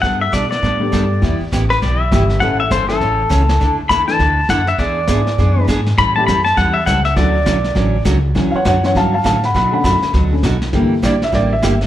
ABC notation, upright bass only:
X:1
M:4/4
L:1/8
Q:"Swing" 1/4=202
K:D
V:1 name="Upright bass" clef=bass
G,,2 B,,2 A,,2 G,,2 | E,, z A,,,2 B,,,2 G,,,2 | A,,,2 G,,,2 A,,,2 C,,2 | D,, z E,,2 D,,2 F,,2 |
E,,2 ^G,,2 F,,2 G,,2 | A,,2 F,,2 E,,2 C,,2 | D,,2 B,,,2 A,,,2 C,,2 | D,, z F,,2 G,,2 A,,2 |
B,,2 F,, z D,,2 B,,,2 | G,,,2 _B,,,2 A,,,2 G,,,2 |]